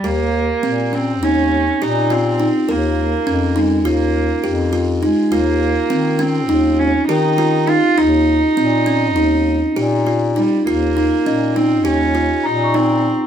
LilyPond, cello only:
\new Staff \with { instrumentName = "Cello" } { \time 9/8 \key ees \mixolydian \tempo 4. = 68 bes4. c'8 des'4 ees'8 c'4 | bes4. aes8 bes4. r8 aes8 | bes4. c'4 des'8 ees'4 f'8 | ees'2.~ ees'8 r8 g8 |
bes4. c'8 des'4 ees'8 c'4 | }